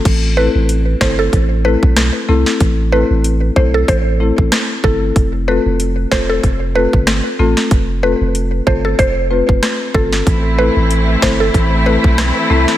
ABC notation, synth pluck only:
X:1
M:4/4
L:1/16
Q:"Swing 16ths" 1/4=94
K:Am
V:1 name="Synth pluck"
z2 B z3 c A z2 B z4 z | z2 B z3 c A c3 z3 A z | z2 B z3 c A z2 B z4 z | z2 B z3 c A c3 z3 A z |
z2 B z3 c A z2 B z4 z |]